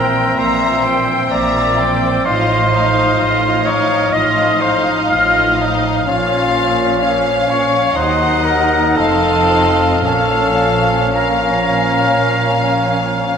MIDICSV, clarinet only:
0, 0, Header, 1, 2, 480
1, 0, Start_track
1, 0, Key_signature, -5, "minor"
1, 0, Tempo, 938967
1, 1153, Time_signature, 4, 2, 24, 8
1, 2113, Tempo, 956938
1, 4033, Tempo, 990099
1, 4513, Tempo, 1092896
1, 6456, End_track
2, 0, Start_track
2, 0, Title_t, "Clarinet"
2, 0, Program_c, 0, 71
2, 0, Note_on_c, 0, 70, 77
2, 197, Note_on_c, 0, 72, 76
2, 204, Note_off_c, 0, 70, 0
2, 669, Note_off_c, 0, 72, 0
2, 672, Note_on_c, 0, 74, 81
2, 1152, Note_on_c, 0, 72, 87
2, 1160, Note_off_c, 0, 74, 0
2, 1866, Note_on_c, 0, 73, 74
2, 1874, Note_off_c, 0, 72, 0
2, 2111, Note_on_c, 0, 75, 85
2, 2119, Note_off_c, 0, 73, 0
2, 2353, Note_on_c, 0, 72, 75
2, 2360, Note_off_c, 0, 75, 0
2, 2523, Note_off_c, 0, 72, 0
2, 2595, Note_on_c, 0, 77, 79
2, 2833, Note_off_c, 0, 77, 0
2, 3083, Note_on_c, 0, 65, 83
2, 3567, Note_on_c, 0, 61, 66
2, 3575, Note_off_c, 0, 65, 0
2, 3795, Note_on_c, 0, 73, 75
2, 3803, Note_off_c, 0, 61, 0
2, 4035, Note_on_c, 0, 72, 74
2, 4042, Note_off_c, 0, 73, 0
2, 4268, Note_on_c, 0, 70, 73
2, 4276, Note_off_c, 0, 72, 0
2, 4518, Note_on_c, 0, 69, 81
2, 4524, Note_off_c, 0, 70, 0
2, 4992, Note_off_c, 0, 69, 0
2, 4995, Note_on_c, 0, 69, 82
2, 5480, Note_on_c, 0, 70, 59
2, 5487, Note_off_c, 0, 69, 0
2, 6434, Note_off_c, 0, 70, 0
2, 6456, End_track
0, 0, End_of_file